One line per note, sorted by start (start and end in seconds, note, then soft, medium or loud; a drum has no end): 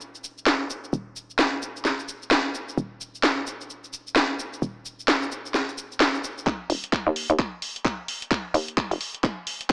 0.00 0.91 D#1 medium
0.00 cabasa soft
0.15 cabasa soft
0.24 cabasa medium
0.38 cabasa soft
0.46 snare loud
0.46 cabasa soft
0.70 cabasa medium
0.84 cabasa soft
0.93 2.76 D#1 medium
0.93 cabasa soft
1.16 cabasa medium
1.30 cabasa soft
1.39 snare loud
1.39 cabasa soft
1.63 cabasa medium
1.77 cabasa soft
1.85 snare medium
1.85 cabasa soft
1.99 cabasa soft
2.09 cabasa medium
2.22 cabasa soft
2.31 snare loud
2.31 cabasa soft
2.55 cabasa medium
2.69 cabasa soft
2.78 4.60 D#1 medium
2.78 cabasa soft
3.01 cabasa medium
3.15 cabasa soft
3.23 snare loud
3.23 cabasa soft
3.47 cabasa medium
3.61 cabasa soft
3.70 cabasa soft
3.84 cabasa soft
3.93 cabasa medium
4.07 cabasa soft
4.16 snare loud
4.16 cabasa soft
4.40 cabasa medium
4.53 cabasa soft
4.62 6.45 D#1 medium
4.62 cabasa soft
4.86 cabasa medium
5.00 cabasa soft
5.08 snare loud
5.08 cabasa soft
5.23 cabasa soft
5.32 cabasa medium
5.46 cabasa soft
5.54 snare medium
5.54 cabasa soft
5.69 cabasa soft
5.78 cabasa medium
5.92 cabasa soft
6.00 snare loud
6.00 cabasa soft
6.15 cabasa soft
6.24 cabasa medium
6.38 cabasa soft
6.47 6.68 D#1 medium
6.47 kick loud
6.47 clap soft
6.47 closed hi-hat medium
6.70 7.05 D#1 loud
6.70 open hi-hat loud
6.84 closed hi-hat medium
6.93 kick loud
6.93 clap soft
6.93 closed hi-hat medium
7.07 7.28 D#2 loud
7.16 open hi-hat loud
7.30 7.38 D#2 medium
7.30 closed hi-hat medium
7.39 kick loud
7.39 clap medium
7.39 closed hi-hat medium
7.62 open hi-hat loud
7.76 closed hi-hat medium
7.85 kick loud
7.85 clap medium
7.85 closed hi-hat medium
8.08 open hi-hat loud
8.22 closed hi-hat medium
8.31 kick loud
8.31 clap medium
8.31 closed hi-hat medium
8.54 8.89 D#2 medium
8.54 open hi-hat loud
8.68 closed hi-hat medium
8.77 kick loud
8.77 clap medium
8.77 closed hi-hat medium
8.91 8.99 F1 loud
8.91 open hi-hat medium
9.01 open hi-hat loud
9.15 closed hi-hat medium
9.24 9.68 D#1 loud
9.24 kick loud
9.24 clap medium
9.24 closed hi-hat medium
9.47 open hi-hat loud
9.61 closed hi-hat medium